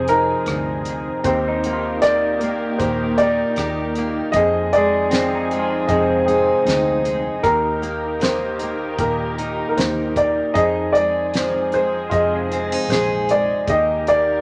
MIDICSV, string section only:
0, 0, Header, 1, 2, 480
1, 0, Start_track
1, 0, Key_signature, -3, "major"
1, 0, Tempo, 777202
1, 766, Time_signature, 4, 2, 24, 8
1, 8900, End_track
2, 0, Start_track
2, 0, Title_t, "String section"
2, 0, Program_c, 0, 48
2, 0, Note_on_c, 0, 53, 68
2, 0, Note_on_c, 0, 60, 65
2, 0, Note_on_c, 0, 63, 58
2, 0, Note_on_c, 0, 68, 74
2, 749, Note_off_c, 0, 53, 0
2, 751, Note_off_c, 0, 68, 0
2, 752, Note_off_c, 0, 60, 0
2, 777, Note_on_c, 0, 70, 79
2, 780, Note_on_c, 0, 67, 65
2, 782, Note_on_c, 0, 51, 71
2, 2666, Note_off_c, 0, 70, 0
2, 2668, Note_off_c, 0, 67, 0
2, 2669, Note_off_c, 0, 51, 0
2, 2678, Note_on_c, 0, 53, 68
2, 2679, Note_on_c, 0, 68, 80
2, 2686, Note_on_c, 0, 60, 67
2, 4574, Note_off_c, 0, 53, 0
2, 4575, Note_off_c, 0, 68, 0
2, 4579, Note_off_c, 0, 60, 0
2, 4582, Note_on_c, 0, 67, 60
2, 4591, Note_on_c, 0, 51, 70
2, 4593, Note_on_c, 0, 70, 76
2, 6496, Note_off_c, 0, 67, 0
2, 6500, Note_off_c, 0, 51, 0
2, 6502, Note_off_c, 0, 70, 0
2, 6524, Note_on_c, 0, 60, 64
2, 6526, Note_on_c, 0, 68, 73
2, 6527, Note_on_c, 0, 53, 66
2, 8430, Note_off_c, 0, 60, 0
2, 8430, Note_off_c, 0, 68, 0
2, 8431, Note_off_c, 0, 53, 0
2, 8458, Note_on_c, 0, 70, 79
2, 8459, Note_on_c, 0, 67, 68
2, 8466, Note_on_c, 0, 51, 68
2, 8900, Note_off_c, 0, 51, 0
2, 8900, Note_off_c, 0, 63, 0
2, 8900, Note_off_c, 0, 67, 0
2, 8900, Note_off_c, 0, 70, 0
2, 8900, End_track
0, 0, End_of_file